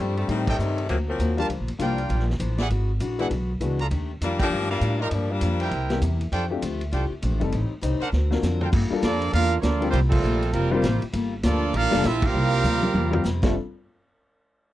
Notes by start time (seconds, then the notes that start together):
Already playing: F3
0.00 G2 G3 A3 C4 D4 G4
0.17 G3 A3 C4 D4, ride
0.28 A2 D#3 G3 A3 C4 D#4 G4, kick, ride
0.47 C3 D#3 G3 A3 D#4 A4 C5 G5, kick, crash
0.58 G2 A2 G3 C4 D#4, hi-hat pedal
0.78 ride
0.89 D2 C3 D3 F3 F#3 A#3 C4 F#4, kick, ride
1.08 F3 F#3 A#3 C4
1.18 D#2 D3 A#3 C4 F#4, kick, hi-hat pedal, ride
1.37 F3 G3 A#3 D4 F4 G4 A#4 D5 A5, ride
1.49 D2 G2 F3 A#3 D4, kick, ride
1.60 A#1
1.68 G1, ride
1.78 C2 G2 F3 G3 A#3 D4 F4 G4 A#4 D5 G5, kick, hi-hat pedal, ride
1.98 ride
2.09 A#1 G2 F3 A#3 D4, kick, ride
2.19 snare
2.30 snare
2.39 A1 G2 F3 A#3 D4, kick, hi-hat pedal, ride
2.58 E4 G#4 D5 F#5, snare, ride
2.69 G#1 E3 G#3 D4 F#4, kick, ride
3.00 A#1 E3 G#3 D4 F#4, kick, hi-hat pedal, ride
3.19 E3 G#3 B3 D4 E4 F#4 G#4 D5 F#5, ride
3.30 B1 E3 G#3 D4 F#4, kick, ride
3.60 C#2 E3 G#3 B3 D4 F#4, kick, hi-hat pedal, ride
3.79 F4 A4 D5 A#5, ride
3.91 D#2 D#3 A3 D4 G4, kick, ride
4.21 F2 D#3 G3 A3 A#3 D4 F4 G4, kick, hi-hat pedal, ride
4.39 F3 A#3 D4 F4 G4 A4 D5 G5, kick, crash
4.50 G2 D#3 A3 D4 G4
4.61 snare
4.70 G3 A#3 D4 F4, snare
4.81 A2 D#3 A3 D4 G4, kick, hi-hat pedal, ride
4.99 F3 G3 A#3 D#4 F4 A#4 D5 A#5
5.11 G2 F3 G3 A#3 D4, kick, ride
5.31 G3 A#3 D4 F4
5.41 F2 G2 F3 A#3 D4, kick, hi-hat pedal, ride
5.60 E4 A#4 C5 G5, ride
5.71 C2 C3 A#3 E4 G4, kick, ride
5.90 E3 G3 A#3 C4 G4, snare, ride
6.01 E2 C3 A#3 E4 G4, kick, hi-hat pedal, ride
6.21 ride
6.32 F2 F3 A3 D4 F4 G4 A4 D5 G5, kick, ride
6.50 F3 A3 C4 D4 G4
6.62 D2 F3 A3 D4 G4, kick, hi-hat pedal, ride
6.81 ride
6.91 C2 F3 A3 D4 F4 G4 A4 D5 G5, kick, ride
7.11 muted upright bass stroke
7.22 A#1 F3 A3 D4 G4, kick, hi-hat pedal, ride
7.32 A1
7.40 F1 G3 A3 C4 D#4 A4, ride
7.52 A1 A2 G3 C4 D#4, kick, ride
7.70 muted upright bass stroke
7.81 C2 A2 G3 C4 D#4, kick, hi-hat pedal, ride
8.01 D4 A#4 C5 F#5, muted upright bass stroke, ride
8.12 D2 D3 C4 F#4 A#4, snare
8.31 F#3 C4 D4 F4 A#4, snare
8.42 F2 D3 C4 F#4 A#4, snare, hi-hat pedal
8.61 F4 A4 A#4 G5, floor tom
8.72 G2 G3 A#3 F4 A4, kick, crash
8.90 G3 A#3 D4 F4 A4, muted upright bass stroke
9.02 F2 F3 G3 A#3 D4 F4 A4 D5, kick, snare, hi-hat pedal, ride
9.22 ride
9.32 E2 G3 A#3 D4 F4 A4 A#4 F5, kick, ride
9.59 D2 F3 G3 A#3 D4 F4 A4 C#5 D5, kick, snare, hi-hat pedal, ride
9.64 A4
9.81 G3 A#3 C4 F4 G4, ride
9.90 C2 C3 F3 G3 A#3 C4 F4 G4 C5, kick, ride
9.95 A#3 F4
10.09 A#2 F3 G3 A3 C4 F4 A4, kick, crash
10.22 A#1 C3 G3 A#3 F4, hi-hat pedal
10.42 ride
10.52 F1 C3 F3 G3 A#3 C4 F4 A#4, kick, ride
10.71 F3 G3 A#3 C4 F4 G4 A#4 C5
10.82 A1 C3 G3 A#3 F4, kick, snare, hi-hat pedal, ride
11.02 muted upright bass stroke, ride
11.12 G1 G3 A#3 F4 A4, kick, ride
11.43 D2 F3 G3 A#3 D4 F4 A4 D5, kick, snare, hi-hat pedal, ride
11.73 A1 G3 A#3 D4 F4 A4 A#4 F5, kick, ride
11.83 G1
11.91 F1 G3 A#3 D4 F4 A4, snare, ride
12.04 A#1 G3 A#3 C4 E4 F4 A4 E5, kick, snare, hi-hat pedal, ride
12.22 G3 A#3 C4 F4 G4 A#4 F5, kick, crash
12.33 C2 C3 G3 A#3 F4
12.63 D2 C3 G3 A#3 F4, hi-hat pedal, high tom
12.83 high tom
12.94 E2 C3 G3 A#3 F4, high tom
13.11 G3 A#3 C4 F4 A#4, floor tom
13.24 F2 C3 G3 A#3 F4, snare, hi-hat pedal
13.42 F1 F2 C3 D3 F3 G3 A3 C4 D4 F4 G4 A4, kick, snare, crash